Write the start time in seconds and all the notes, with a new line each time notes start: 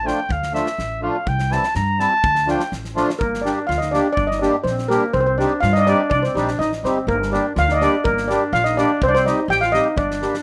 Already playing: A1
0.03 F3 A3 D4 F4 G5
0.08 snare
0.29 D2 F5, kick
0.43 snare
0.52 F3 A3 D4 F4 E5, snare
0.66 snare
0.78 A1, snare
1.01 F3 A3 D4 F4 F5
1.27 C2 G5, kick
1.39 snare
1.50 E3 G3 C4 E4 A5, snare
1.63 snare
1.75 G2 A#5, snare
1.98 E3 G3 C4 E4 A5, snare
2.24 D2, kick
2.35 snare
2.45 F3 A3 D4 F4, snare
2.51 G5
2.60 snare
2.72 A1, snare
2.85 snare
2.95 F3 A3 D4 F4, snare
3.10 snare
3.19 G1 A#3 A#4, kick
3.34 snare
3.42 G3 A#3 D4 G4 D5
3.46 snare
3.67 D2 F4 F5, snare
3.78 D#4 D#5, snare
3.91 G3 A#3 D4 G4 D5, snare
4.13 D5
4.17 G1 D4, kick
4.27 D#5
4.31 D#4, snare
4.39 G3 A#3 D4 G4 D5, snare
4.64 A#1 C4 C5, snare
4.78 snare
4.88 G3 A#3 D4 G4 A#4, snare
5.13 C2 C4 C5, kick
5.20 C4 C5
5.26 C4 C5
5.37 G3 C4 D4 D#4 G4 D5, snare
5.60 G2 F4 F5, snare
5.73 D#4 D#5, snare
5.77 D4 D#4 D5 D#5
5.86 G3 C4 D4 D#4 G4 D5, snare
6.10 C2 D4 D5, kick
6.23 C4 C5, snare
6.34 A#1 G3 C4 D4 D#4 G4 D5, snare
6.48 snare
6.59 A1 D#4 D#5, snare
6.72 snare
6.83 G1 G3 C4 D#4 G4 C5, snare
7.07 G1 A#3 A#4, kick
7.22 snare
7.30 G3 A#3 D4 G4 D5, snare
7.55 D2 F4 F5, snare
7.68 D4 D#4 D5, snare
7.74 D#4 D#5
7.80 G3 A#3 D4 G4 D5, snare
8.04 G1 A#3 A#4, kick
8.18 snare
8.28 G3 A#3 D4 G4 D5, snare
8.53 A#1 F4 F5, snare
8.64 D#4 D#5, snare
8.76 G3 A#3 D4 G4 D5, snare
9.01 C2 C4 C5, kick
9.08 D4 D5
9.15 C4 C5, snare
9.24 G3 C4 D#4 G4 D#5, snare
9.48 A1 G4 G5, snare
9.61 F4 F5, snare
9.72 G3 C4 D#4 G4 D#5, snare
9.96 G1 D4 D5, kick
10.11 snare
10.20 G3 A#3 D4 G4, snare
10.34 snare